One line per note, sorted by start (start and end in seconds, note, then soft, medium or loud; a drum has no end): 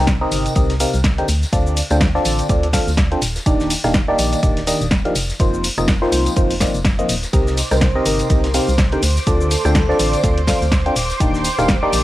0.00 0.25 C2 medium
0.00 0.13 C3 medium
0.00 0.13 C4 medium
0.00 0.13 D#4 medium
0.00 0.13 G4 medium
0.00 0.13 A#4 medium
0.00 0.13 G5 medium
0.07 kick loud
0.07 snare loud
0.07 closed hi-hat medium
0.07 ride medium
0.07 tambourine soft
0.07 cabasa soft
0.21 0.53 C3 medium
0.21 0.53 C4 medium
0.21 0.53 D#4 medium
0.21 0.53 G4 medium
0.21 0.53 A#4 medium
0.21 0.53 D#5 loud
0.31 0.48 G1 medium
0.31 open hi-hat loud
0.31 ride medium
0.31 tambourine medium
0.31 cabasa medium
0.46 closed hi-hat medium
0.46 ride soft
0.46 tambourine soft
0.46 cabasa soft
0.56 0.85 C2 loud
0.56 0.74 C3 medium
0.56 0.74 C4 medium
0.56 0.74 D#4 medium
0.56 0.74 G4 medium
0.56 0.74 A#4 medium
0.56 0.74 D#5 medium
0.56 kick loud
0.56 closed hi-hat medium
0.56 ride medium
0.56 tambourine soft
0.56 cabasa soft
0.70 snare medium
0.70 closed hi-hat medium
0.80 0.98 C3 medium
0.80 0.98 C4 medium
0.80 0.98 D#4 medium
0.80 0.98 G4 medium
0.80 0.98 A#4 medium
0.80 0.98 F5 medium
0.80 open hi-hat loud
0.80 ride medium
0.80 tambourine medium
0.80 cabasa medium
0.93 1.22 C2 medium
0.93 tambourine medium
0.93 cabasa soft
1.04 kick loud
1.04 snare loud
1.04 closed hi-hat medium
1.04 ride medium
1.04 cabasa soft
1.18 1.27 D3 medium
1.18 1.27 C4 medium
1.18 1.27 D#4 medium
1.18 1.27 G4 medium
1.18 1.27 A#4 medium
1.18 1.27 G5 medium
1.18 closed hi-hat soft
1.18 ride soft
1.28 1.45 D2 medium
1.28 open hi-hat loud
1.28 ride medium
1.28 tambourine medium
1.28 cabasa medium
1.43 snare soft
1.43 tambourine medium
1.43 cabasa soft
1.53 1.82 D2 loud
1.53 1.80 D3 medium
1.53 1.80 C4 medium
1.53 1.80 D4 medium
1.53 1.80 F4 medium
1.53 1.80 A4 medium
1.53 1.80 D5 medium
1.53 kick loud
1.53 closed hi-hat medium
1.53 ride medium
1.53 tambourine soft
1.53 cabasa soft
1.67 cabasa soft
1.77 open hi-hat loud
1.77 ride medium
1.77 tambourine medium
1.77 cabasa medium
1.90 2.19 D2 medium
1.90 2.07 D3 medium
1.90 2.07 C4 medium
1.90 2.07 D4 medium
1.90 2.07 F4 medium
1.90 2.07 A4 medium
1.90 2.07 G5 medium
1.90 cross-stick medium
1.90 tambourine soft
1.90 cabasa soft
2.01 kick loud
2.01 snare loud
2.01 closed hi-hat medium
2.01 ride medium
2.01 tambourine soft
2.01 cabasa soft
2.15 2.47 D3 medium
2.15 2.47 C4 medium
2.15 2.47 D4 medium
2.15 2.47 F4 medium
2.15 2.47 A4 medium
2.15 2.47 D5 loud
2.15 snare soft
2.25 2.41 A1 medium
2.25 open hi-hat loud
2.25 ride medium
2.25 tambourine medium
2.25 cabasa medium
2.39 closed hi-hat medium
2.39 tambourine medium
2.39 cabasa soft
2.49 2.79 D2 loud
2.49 2.67 D3 medium
2.49 2.67 C4 medium
2.49 2.67 D4 medium
2.49 2.67 F4 medium
2.49 2.67 A4 medium
2.49 2.67 D5 medium
2.49 kick loud
2.49 closed hi-hat medium
2.49 ride medium
2.49 tambourine soft
2.49 cabasa soft
2.63 closed hi-hat medium
2.63 ride soft
2.73 2.92 D3 medium
2.73 2.92 C4 medium
2.73 2.92 D4 medium
2.73 2.92 F4 medium
2.73 2.92 A4 medium
2.73 2.92 F5 medium
2.73 kick medium
2.73 snare medium
2.73 open hi-hat loud
2.73 ride medium
2.73 tambourine medium
2.73 cabasa medium
2.88 3.16 D2 medium
2.88 tambourine medium
2.88 cabasa soft
2.97 kick loud
2.97 snare loud
2.97 closed hi-hat medium
2.97 ride medium
2.97 cabasa soft
3.12 3.21 C4 medium
3.12 3.21 D4 medium
3.12 3.21 F4 medium
3.12 3.21 A4 medium
3.12 3.21 G5 medium
3.12 closed hi-hat soft
3.22 3.38 D#1 loud
3.22 snare soft
3.22 open hi-hat loud
3.22 ride medium
3.22 tambourine loud
3.22 cabasa medium
3.36 snare soft
3.36 tambourine medium
3.36 cabasa soft
3.46 3.76 D#1 loud
3.46 3.74 D#3 medium
3.46 3.74 A#3 medium
3.46 3.74 D4 medium
3.46 3.74 D#4 medium
3.46 3.74 G4 medium
3.46 3.74 D5 medium
3.46 kick loud
3.46 closed hi-hat medium
3.46 ride medium
3.46 tambourine soft
3.46 cabasa soft
3.60 snare soft
3.60 cabasa soft
3.70 open hi-hat loud
3.70 ride medium
3.70 tambourine loud
3.70 cabasa medium
3.84 4.12 D#1 medium
3.84 4.00 D#3 medium
3.84 4.00 A#3 medium
3.84 4.00 D4 medium
3.84 4.00 D#4 medium
3.84 4.00 G4 medium
3.84 4.00 F5 medium
3.84 cross-stick medium
3.84 snare soft
3.84 tambourine medium
3.84 cabasa soft
3.94 kick loud
3.94 snare loud
3.94 closed hi-hat medium
3.94 ride medium
3.94 cabasa soft
4.08 4.40 D#3 loud
4.08 4.40 A#3 medium
4.08 4.40 D4 medium
4.08 4.40 D#4 medium
4.08 4.40 G4 medium
4.08 4.40 D5 loud
4.19 4.35 A#1 medium
4.19 open hi-hat loud
4.19 ride medium
4.19 tambourine medium
4.19 cabasa medium
4.33 closed hi-hat soft
4.33 ride soft
4.33 tambourine medium
4.33 cabasa soft
4.43 4.72 D#1 loud
4.43 4.61 D#3 medium
4.43 4.61 A#3 medium
4.43 4.61 D4 medium
4.43 4.61 D#4 medium
4.43 4.61 G4 medium
4.43 4.61 D5 medium
4.43 kick loud
4.43 closed hi-hat medium
4.43 ride medium
4.43 cabasa soft
4.57 snare soft
4.57 closed hi-hat soft
4.67 4.85 D#3 medium
4.67 4.85 A#3 medium
4.67 4.85 D4 medium
4.67 4.85 D#4 medium
4.67 4.85 G4 medium
4.67 4.85 D#5 medium
4.67 open hi-hat loud
4.67 ride medium
4.67 tambourine loud
4.67 cabasa medium
4.81 5.09 D#1 medium
4.81 tambourine medium
4.81 cabasa soft
4.91 kick loud
4.91 snare loud
4.91 closed hi-hat medium
4.91 ride medium
4.91 tambourine soft
4.91 cabasa soft
5.05 5.14 F3 medium
5.05 5.14 A#3 medium
5.05 5.14 D4 medium
5.05 5.14 D#4 medium
5.05 5.14 G4 medium
5.05 5.14 F5 medium
5.05 closed hi-hat soft
5.05 ride soft
5.15 5.32 F1 medium
5.15 open hi-hat loud
5.15 ride medium
5.15 tambourine medium
5.15 cabasa medium
5.29 snare soft
5.29 tambourine medium
5.29 cabasa soft
5.39 5.69 F1 loud
5.39 5.67 F3 medium
5.39 5.67 A#3 medium
5.39 5.67 C4 medium
5.39 5.67 D#4 medium
5.39 5.67 F4 medium
5.39 5.67 C5 medium
5.39 kick loud
5.39 closed hi-hat medium
5.39 ride medium
5.39 tambourine soft
5.39 cabasa soft
5.54 cabasa soft
5.64 open hi-hat loud
5.64 ride medium
5.64 tambourine loud
5.64 cabasa medium
5.78 6.06 F1 medium
5.78 5.94 F3 medium
5.78 5.94 A#3 medium
5.78 5.94 C4 medium
5.78 5.94 D#4 medium
5.78 5.94 F4 medium
5.78 5.94 D#5 medium
5.78 cross-stick medium
5.78 tambourine soft
5.78 cabasa soft
5.88 kick loud
5.88 snare loud
5.88 closed hi-hat medium
5.88 ride medium
5.88 tambourine soft
5.88 cabasa soft
6.02 6.34 F3 medium
6.02 6.34 A#3 medium
6.02 6.34 C4 medium
6.02 6.34 D#4 medium
6.02 6.34 F4 medium
6.02 6.34 C5 loud
6.02 snare soft
6.12 6.28 C2 medium
6.12 open hi-hat loud
6.12 ride medium
6.12 tambourine loud
6.12 cabasa medium
6.26 closed hi-hat soft
6.26 tambourine medium
6.26 cabasa soft
6.36 6.66 F1 loud
6.36 6.54 F3 medium
6.36 6.54 A#3 medium
6.36 6.54 C4 medium
6.36 6.54 D#4 medium
6.36 6.54 F4 medium
6.36 6.54 C5 medium
6.36 kick loud
6.36 closed hi-hat medium
6.36 ride medium
6.36 cabasa soft
6.50 open hi-hat medium
6.50 ride soft
6.50 cabasa soft
6.60 6.79 F3 medium
6.60 6.79 A#3 medium
6.60 6.79 C4 medium
6.60 6.79 D#4 medium
6.60 6.79 F4 medium
6.60 6.79 D5 medium
6.60 kick medium
6.60 snare medium
6.60 open hi-hat loud
6.60 ride medium
6.60 tambourine medium
6.60 cabasa medium
6.74 7.03 F1 medium
6.74 tambourine medium
6.74 cabasa soft
6.85 kick loud
6.85 snare loud
6.85 closed hi-hat medium
6.85 ride medium
6.85 tambourine soft
6.85 cabasa soft
6.99 7.15 F3 medium
6.99 7.15 A#3 medium
6.99 7.15 C4 medium
6.99 7.15 D#4 medium
6.99 7.15 F4 medium
6.99 7.15 D#5 medium
6.99 closed hi-hat soft
6.99 cabasa soft
7.09 7.25 D#1 medium
7.09 snare soft
7.09 open hi-hat loud
7.09 ride medium
7.09 tambourine medium
7.09 cabasa medium
7.23 snare soft
7.23 closed hi-hat soft
7.23 tambourine medium
7.23 cabasa soft
7.33 7.63 C2 medium
7.33 7.61 C3 medium
7.33 7.61 C4 medium
7.33 7.61 D#4 medium
7.33 7.61 G4 medium
7.33 7.61 A#4 medium
7.33 12.03 C5 medium
7.33 7.61 D#5 medium
7.33 12.03 D6 medium
7.33 kick loud
7.33 closed hi-hat medium
7.33 ride medium
7.33 tambourine soft
7.33 cabasa soft
7.47 snare soft
7.47 cabasa soft
7.58 open hi-hat loud
7.58 ride medium
7.58 tambourine medium
7.58 cabasa medium
7.71 7.99 C2 medium
7.71 7.87 C3 medium
7.71 7.87 C4 medium
7.71 7.87 D#4 medium
7.71 7.87 G4 medium
7.71 7.87 A#4 medium
7.71 7.90 C5 medium
7.71 7.87 G5 medium
7.71 cross-stick medium
7.71 snare soft
7.71 tambourine medium
7.71 cabasa soft
7.81 kick loud
7.81 snare loud
7.81 closed hi-hat medium
7.81 ride medium
7.81 cabasa soft
7.95 8.28 C3 medium
7.95 8.28 C4 medium
7.95 8.28 D#4 medium
7.95 8.28 G4 medium
7.95 8.28 A#4 medium
7.95 8.28 D#5 loud
8.05 8.22 G1 medium
8.05 8.52 A#4 loud
8.05 open hi-hat loud
8.05 ride medium
8.05 tambourine medium
8.05 cabasa medium
8.19 closed hi-hat medium
8.19 ride soft
8.19 tambourine soft
8.19 cabasa soft
8.30 8.59 C2 loud
8.30 8.48 C3 medium
8.30 8.48 C4 medium
8.30 8.48 D#4 medium
8.30 8.48 G4 medium
8.30 8.48 A#4 medium
8.30 8.48 D#5 medium
8.30 kick loud
8.30 closed hi-hat medium
8.30 ride medium
8.30 tambourine soft
8.30 cabasa soft
8.44 snare medium
8.44 closed hi-hat medium
8.54 8.72 C3 medium
8.54 8.72 C4 medium
8.54 8.72 D#4 medium
8.54 8.72 G4 medium
8.54 8.72 A#4 medium
8.54 8.63 C5 medium
8.54 8.72 F5 medium
8.54 open hi-hat loud
8.54 ride medium
8.54 tambourine loud
8.54 cabasa medium
8.68 8.96 C2 medium
8.68 8.75 C5 medium
8.68 tambourine soft
8.68 cabasa soft
8.78 kick loud
8.78 snare loud
8.78 closed hi-hat medium
8.78 ride medium
8.78 cabasa soft
8.92 9.01 D3 medium
8.92 9.01 C4 medium
8.92 9.01 D#4 medium
8.92 9.01 G4 medium
8.92 9.01 A#4 medium
8.92 9.01 G5 medium
8.92 closed hi-hat soft
8.92 ride soft
9.03 9.19 D2 loud
9.03 open hi-hat loud
9.03 ride medium
9.03 tambourine medium
9.03 cabasa medium
9.16 snare soft
9.16 tambourine medium
9.16 cabasa soft
9.27 9.56 D2 loud
9.27 9.54 D3 medium
9.27 9.54 C4 medium
9.27 9.54 D4 medium
9.27 9.54 F4 medium
9.27 9.54 A4 medium
9.27 9.54 D5 medium
9.27 kick loud
9.27 closed hi-hat medium
9.27 ride medium
9.27 cabasa soft
9.41 cabasa soft
9.51 9.73 A4 medium
9.51 open hi-hat loud
9.51 ride medium
9.51 tambourine medium
9.51 cabasa medium
9.65 9.93 D2 medium
9.65 9.81 D3 medium
9.65 9.81 C4 medium
9.65 9.81 D4 medium
9.65 9.81 F4 medium
9.65 9.81 A4 medium
9.65 9.81 G5 medium
9.65 cross-stick medium
9.65 tambourine soft
9.65 cabasa soft
9.75 9.96 A4 loud
9.75 kick loud
9.75 snare loud
9.75 closed hi-hat medium
9.75 ride medium
9.75 cabasa soft
9.89 10.21 D3 medium
9.89 10.21 C4 medium
9.89 10.21 D4 medium
9.89 10.21 F4 medium
9.89 10.21 A4 medium
9.89 10.21 D5 loud
9.89 snare soft
9.99 10.16 A1 medium
9.99 10.48 C5 medium
9.99 open hi-hat loud
9.99 ride medium
9.99 tambourine medium
9.99 cabasa medium
10.13 closed hi-hat medium
10.13 tambourine soft
10.13 cabasa soft
10.24 10.53 D2 loud
10.24 10.42 D3 medium
10.24 10.42 C4 medium
10.24 10.42 D4 medium
10.24 10.42 F4 medium
10.24 10.42 A4 medium
10.24 10.42 D5 medium
10.24 kick loud
10.24 closed hi-hat medium
10.24 ride medium
10.24 tambourine soft
10.24 cabasa soft
10.38 closed hi-hat medium
10.38 ride soft
10.47 10.66 D3 medium
10.47 10.66 C4 medium
10.47 10.66 D4 medium
10.47 10.66 F4 medium
10.47 10.66 A4 medium
10.47 10.66 F5 medium
10.47 kick medium
10.47 snare medium
10.47 open hi-hat loud
10.47 ride medium
10.47 tambourine medium
10.47 cabasa medium
10.62 10.90 D2 medium
10.62 tambourine soft
10.62 cabasa soft
10.72 kick loud
10.72 snare loud
10.72 closed hi-hat medium
10.72 ride medium
10.72 tambourine soft
10.72 cabasa soft
10.86 10.95 C4 medium
10.86 10.95 D4 medium
10.86 10.95 F4 medium
10.86 10.95 A4 medium
10.86 10.95 G5 medium
10.86 closed hi-hat soft
10.96 11.12 D#1 loud
10.96 snare soft
10.96 open hi-hat loud
10.96 ride medium
10.96 tambourine medium
10.96 cabasa medium
11.10 snare soft
11.10 tambourine medium
11.10 cabasa soft
11.20 11.50 D#1 loud
11.20 11.48 D#3 medium
11.20 11.48 A#3 medium
11.20 11.48 D4 medium
11.20 11.48 D#4 medium
11.20 11.48 G4 medium
11.20 11.48 D5 medium
11.20 kick loud
11.20 closed hi-hat medium
11.20 ride medium
11.20 tambourine soft
11.20 cabasa soft
11.35 snare soft
11.35 cabasa soft
11.44 open hi-hat loud
11.44 ride medium
11.44 tambourine medium
11.44 cabasa medium
11.58 11.87 D#1 medium
11.58 11.74 D#3 medium
11.58 11.74 A#3 medium
11.58 11.74 D4 medium
11.58 11.74 D#4 medium
11.58 11.74 G4 medium
11.58 11.74 F5 medium
11.58 cross-stick medium
11.58 snare soft
11.58 tambourine soft
11.58 cabasa soft
11.68 kick loud
11.68 snare loud
11.68 closed hi-hat medium
11.68 ride medium
11.68 cabasa soft
11.83 12.03 D#3 loud
11.83 12.03 A#3 medium
11.83 12.03 D4 medium
11.83 12.03 D#4 medium
11.83 12.03 G4 medium
11.83 12.03 D5 loud
11.92 12.03 A#1 medium
11.92 open hi-hat loud
11.92 ride medium
11.92 tambourine medium
11.92 cabasa medium